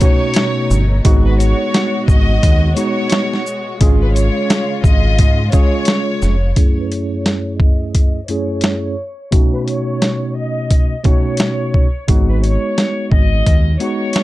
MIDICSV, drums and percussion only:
0, 0, Header, 1, 2, 480
1, 0, Start_track
1, 0, Tempo, 689655
1, 730, Time_signature, 4, 2, 24, 8
1, 9905, End_track
2, 0, Start_track
2, 0, Title_t, "Drums"
2, 4, Note_on_c, 9, 42, 52
2, 4, Note_on_c, 9, 82, 53
2, 11, Note_on_c, 9, 36, 100
2, 74, Note_off_c, 9, 42, 0
2, 74, Note_off_c, 9, 82, 0
2, 81, Note_off_c, 9, 36, 0
2, 234, Note_on_c, 9, 42, 86
2, 253, Note_on_c, 9, 38, 120
2, 304, Note_off_c, 9, 42, 0
2, 323, Note_off_c, 9, 38, 0
2, 491, Note_on_c, 9, 82, 57
2, 560, Note_off_c, 9, 82, 0
2, 729, Note_on_c, 9, 42, 102
2, 731, Note_on_c, 9, 36, 118
2, 799, Note_off_c, 9, 42, 0
2, 801, Note_off_c, 9, 36, 0
2, 976, Note_on_c, 9, 42, 50
2, 976, Note_on_c, 9, 82, 50
2, 1045, Note_off_c, 9, 42, 0
2, 1045, Note_off_c, 9, 82, 0
2, 1213, Note_on_c, 9, 42, 74
2, 1215, Note_on_c, 9, 38, 118
2, 1283, Note_off_c, 9, 42, 0
2, 1284, Note_off_c, 9, 38, 0
2, 1448, Note_on_c, 9, 36, 109
2, 1452, Note_on_c, 9, 82, 51
2, 1518, Note_off_c, 9, 36, 0
2, 1522, Note_off_c, 9, 82, 0
2, 1692, Note_on_c, 9, 42, 97
2, 1693, Note_on_c, 9, 36, 95
2, 1762, Note_off_c, 9, 36, 0
2, 1762, Note_off_c, 9, 42, 0
2, 1925, Note_on_c, 9, 42, 54
2, 1925, Note_on_c, 9, 82, 54
2, 1995, Note_off_c, 9, 42, 0
2, 1995, Note_off_c, 9, 82, 0
2, 2155, Note_on_c, 9, 42, 83
2, 2173, Note_on_c, 9, 38, 122
2, 2224, Note_off_c, 9, 42, 0
2, 2243, Note_off_c, 9, 38, 0
2, 2321, Note_on_c, 9, 38, 37
2, 2391, Note_off_c, 9, 38, 0
2, 2412, Note_on_c, 9, 82, 57
2, 2481, Note_off_c, 9, 82, 0
2, 2650, Note_on_c, 9, 42, 100
2, 2651, Note_on_c, 9, 36, 113
2, 2719, Note_off_c, 9, 42, 0
2, 2721, Note_off_c, 9, 36, 0
2, 2895, Note_on_c, 9, 42, 47
2, 2895, Note_on_c, 9, 82, 49
2, 2965, Note_off_c, 9, 42, 0
2, 2965, Note_off_c, 9, 82, 0
2, 3132, Note_on_c, 9, 42, 71
2, 3134, Note_on_c, 9, 38, 126
2, 3202, Note_off_c, 9, 42, 0
2, 3204, Note_off_c, 9, 38, 0
2, 3368, Note_on_c, 9, 36, 105
2, 3371, Note_on_c, 9, 82, 49
2, 3437, Note_off_c, 9, 36, 0
2, 3441, Note_off_c, 9, 82, 0
2, 3609, Note_on_c, 9, 42, 96
2, 3612, Note_on_c, 9, 36, 96
2, 3679, Note_off_c, 9, 42, 0
2, 3681, Note_off_c, 9, 36, 0
2, 3844, Note_on_c, 9, 42, 52
2, 3844, Note_on_c, 9, 82, 53
2, 3851, Note_on_c, 9, 36, 102
2, 3914, Note_off_c, 9, 42, 0
2, 3914, Note_off_c, 9, 82, 0
2, 3920, Note_off_c, 9, 36, 0
2, 4073, Note_on_c, 9, 42, 82
2, 4092, Note_on_c, 9, 38, 116
2, 4143, Note_off_c, 9, 42, 0
2, 4162, Note_off_c, 9, 38, 0
2, 4330, Note_on_c, 9, 82, 56
2, 4333, Note_on_c, 9, 38, 37
2, 4400, Note_off_c, 9, 82, 0
2, 4402, Note_off_c, 9, 38, 0
2, 4568, Note_on_c, 9, 42, 93
2, 4570, Note_on_c, 9, 36, 111
2, 4638, Note_off_c, 9, 42, 0
2, 4640, Note_off_c, 9, 36, 0
2, 4814, Note_on_c, 9, 42, 47
2, 4883, Note_off_c, 9, 42, 0
2, 5051, Note_on_c, 9, 42, 70
2, 5053, Note_on_c, 9, 38, 114
2, 5120, Note_off_c, 9, 42, 0
2, 5122, Note_off_c, 9, 38, 0
2, 5287, Note_on_c, 9, 36, 100
2, 5357, Note_off_c, 9, 36, 0
2, 5530, Note_on_c, 9, 42, 91
2, 5532, Note_on_c, 9, 36, 88
2, 5600, Note_off_c, 9, 42, 0
2, 5601, Note_off_c, 9, 36, 0
2, 5765, Note_on_c, 9, 42, 50
2, 5834, Note_off_c, 9, 42, 0
2, 5993, Note_on_c, 9, 42, 77
2, 6012, Note_on_c, 9, 38, 109
2, 6062, Note_off_c, 9, 42, 0
2, 6081, Note_off_c, 9, 38, 0
2, 6489, Note_on_c, 9, 42, 94
2, 6491, Note_on_c, 9, 36, 108
2, 6558, Note_off_c, 9, 42, 0
2, 6560, Note_off_c, 9, 36, 0
2, 6734, Note_on_c, 9, 42, 46
2, 6804, Note_off_c, 9, 42, 0
2, 6973, Note_on_c, 9, 42, 71
2, 6974, Note_on_c, 9, 38, 116
2, 7042, Note_off_c, 9, 42, 0
2, 7044, Note_off_c, 9, 38, 0
2, 7451, Note_on_c, 9, 42, 92
2, 7452, Note_on_c, 9, 36, 91
2, 7520, Note_off_c, 9, 42, 0
2, 7522, Note_off_c, 9, 36, 0
2, 7686, Note_on_c, 9, 42, 49
2, 7692, Note_on_c, 9, 36, 93
2, 7756, Note_off_c, 9, 42, 0
2, 7761, Note_off_c, 9, 36, 0
2, 7915, Note_on_c, 9, 42, 76
2, 7934, Note_on_c, 9, 38, 112
2, 7984, Note_off_c, 9, 42, 0
2, 8003, Note_off_c, 9, 38, 0
2, 8173, Note_on_c, 9, 36, 88
2, 8242, Note_off_c, 9, 36, 0
2, 8410, Note_on_c, 9, 42, 96
2, 8411, Note_on_c, 9, 36, 110
2, 8479, Note_off_c, 9, 42, 0
2, 8481, Note_off_c, 9, 36, 0
2, 8655, Note_on_c, 9, 42, 48
2, 8725, Note_off_c, 9, 42, 0
2, 8893, Note_on_c, 9, 42, 71
2, 8895, Note_on_c, 9, 38, 116
2, 8963, Note_off_c, 9, 42, 0
2, 8965, Note_off_c, 9, 38, 0
2, 9128, Note_on_c, 9, 36, 98
2, 9198, Note_off_c, 9, 36, 0
2, 9371, Note_on_c, 9, 42, 90
2, 9372, Note_on_c, 9, 36, 93
2, 9441, Note_off_c, 9, 42, 0
2, 9442, Note_off_c, 9, 36, 0
2, 9606, Note_on_c, 9, 42, 49
2, 9676, Note_off_c, 9, 42, 0
2, 9835, Note_on_c, 9, 42, 78
2, 9854, Note_on_c, 9, 38, 107
2, 9905, Note_off_c, 9, 38, 0
2, 9905, Note_off_c, 9, 42, 0
2, 9905, End_track
0, 0, End_of_file